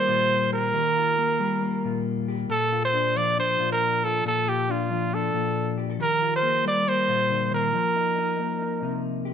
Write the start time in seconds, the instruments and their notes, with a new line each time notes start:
Already playing: clean electric guitar D#3 G3 A#3 G4, trumpet C5
0.08 clean electric guitar A#2 F4
0.52 clean electric guitar G4, trumpet A#4
0.74 clean electric guitar D#3 G4
0.96 clean electric guitar F4
1.18 clean electric guitar A#3
1.40 clean electric guitar G3 G4
1.62 clean electric guitar A#3
1.84 clean electric guitar A#2 F4
2.28 clean electric guitar G4
2.49 clean electric guitar A#2, trumpet A4, muted clean electric guitar stroke
2.72 clean electric guitar F4
2.85 trumpet C5
2.94 clean electric guitar D4
3.16 clean electric guitar F3 F4, trumpet D5
3.38 clean electric guitar D4, trumpet C5
3.60 clean electric guitar A#2 F4
3.72 trumpet A#4
4.04 clean electric guitar F4, trumpet A4
4.25 clean electric guitar A#2 F4, trumpet A4
4.47 clean electric guitar F4, trumpet G4
4.69 clean electric guitar D4, trumpet F4
4.90 clean electric guitar F3 D4
5.13 clean electric guitar D4, trumpet A4
5.34 clean electric guitar A#2 F4
5.78 clean electric guitar G4
5.90 clean electric guitar A4
5.99 clean electric guitar D#3 G4, trumpet A#4
6.22 clean electric guitar F4
6.36 trumpet C5
6.43 clean electric guitar A#3
6.64 clean electric guitar G3 G4, trumpet D5
6.87 clean electric guitar A#3, trumpet C5
7.08 clean electric guitar A#2 F4
7.30 clean electric guitar D3
7.51 clean electric guitar D#3, trumpet A#4
7.73 clean electric guitar F3, muted clean electric guitar stroke
7.96 clean electric guitar D#4
8.18 clean electric guitar D#4
8.39 clean electric guitar A#3 D#4
8.62 clean electric guitar D#4
8.82 clean electric guitar C3 D#4
9.25 clean electric guitar G4